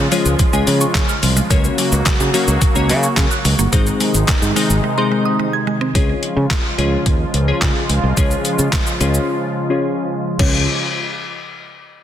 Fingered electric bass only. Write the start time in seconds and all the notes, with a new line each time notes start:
0.26 C#2
0.53 C#2
0.67 C#3
1.23 C2
1.50 C#2
1.92 C#2
2.20 C#3
2.48 C#2
2.75 C#2
2.89 C#3
3.17 C#3
3.45 C#2
3.59 G1
3.73 G#1
4.14 G#1
4.42 G#2
4.70 G#1
5.95 C#2
6.37 C#3
6.78 C#2
7.06 D#2
7.34 C#2
7.62 C#3
7.89 C#2
8.03 C2
8.17 C#2
8.59 C#3
9.01 C#2
10.39 C#2